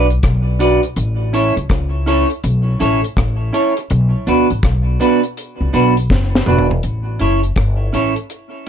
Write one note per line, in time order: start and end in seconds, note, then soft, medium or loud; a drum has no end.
0.00 0.19 B1 loud
0.10 closed hi-hat medium
0.23 0.76 B1 loud
0.23 kick loud
0.23 cross-stick loud
0.23 closed hi-hat medium
0.59 0.79 D4 medium
0.59 0.80 F#4 medium
0.59 0.80 B4 medium
0.59 0.80 D5 medium
0.59 closed hi-hat medium
0.83 muted clean electric guitar stroke soft
0.83 closed hi-hat medium
0.96 1.49 A1 loud
0.96 closed hi-hat medium
1.33 1.53 C#4 medium
1.33 1.53 E4 medium
1.33 1.53 A4 medium
1.33 1.53 C#5 medium
1.33 closed hi-hat medium
1.57 1.68 C#2 medium
1.57 closed hi-hat soft
1.69 2.23 C#2 medium
1.69 kick loud
1.69 cross-stick loud
1.69 closed hi-hat medium
2.06 2.26 C#4 medium
2.06 2.26 E4 medium
2.06 2.27 A4 medium
2.06 2.27 C#5 loud
2.06 closed hi-hat medium
2.30 closed hi-hat medium
2.44 2.76 B1 loud
2.44 closed hi-hat medium
2.80 3.01 A1 medium
2.80 2.99 C#4 medium
2.80 3.00 E4 medium
2.80 3.00 A4 medium
2.80 3.00 C#5 medium
2.80 closed hi-hat medium
3.04 closed hi-hat medium
3.17 3.49 A1 medium
3.17 kick loud
3.17 cross-stick loud
3.17 closed hi-hat medium
3.53 3.72 C#4 medium
3.53 3.73 E4 medium
3.53 3.73 A4 medium
3.53 3.73 C#5 medium
3.53 closed hi-hat medium
3.77 muted clean electric guitar stroke soft
3.77 closed hi-hat medium
3.90 4.11 B1 loud
3.90 closed hi-hat medium
4.27 4.48 D2 medium
4.27 4.46 B3 medium
4.27 4.47 D4 medium
4.27 4.47 F#4 medium
4.27 4.47 B4 medium
4.27 closed hi-hat medium
4.50 4.62 A1 medium
4.50 closed hi-hat medium
4.63 4.96 B1 medium
4.63 kick loud
4.63 cross-stick loud
4.63 closed hi-hat loud
5.00 5.19 B3 medium
5.00 5.20 D4 loud
5.00 5.20 F#4 loud
5.00 5.20 B4 loud
5.00 closed hi-hat medium
5.24 closed hi-hat medium
5.37 closed hi-hat loud
5.61 5.72 C#2 medium
5.73 6.06 B1 medium
5.73 5.93 B3 medium
5.73 5.93 D4 medium
5.73 5.93 F#4 medium
5.73 5.93 B4 loud
5.73 closed hi-hat medium
5.97 closed hi-hat medium
6.10 6.42 F#1 medium
6.10 kick loud
6.10 snare medium
6.35 snare medium
6.46 6.79 E1 medium
6.46 6.66 B3 medium
6.46 6.66 D4 medium
6.46 6.67 F#4 medium
6.46 6.67 B4 medium
6.46 mid tom medium
6.59 floor tom loud
6.71 muted clean electric guitar stroke soft
6.71 floor tom medium
6.83 7.16 A1 loud
6.83 closed hi-hat medium
7.19 7.53 F#1 medium
7.19 7.39 C#4 medium
7.19 7.40 E4 medium
7.19 7.40 A4 medium
7.19 7.40 C#5 medium
7.19 closed hi-hat medium
7.43 closed hi-hat soft
7.56 7.89 G1 medium
7.56 kick loud
7.56 cross-stick loud
7.56 closed hi-hat medium
7.93 8.14 A1 medium
7.93 8.13 C#4 medium
7.93 8.13 E4 medium
7.93 8.13 A4 medium
7.93 8.14 C#5 medium
7.93 closed hi-hat medium
8.16 closed hi-hat medium
8.30 closed hi-hat medium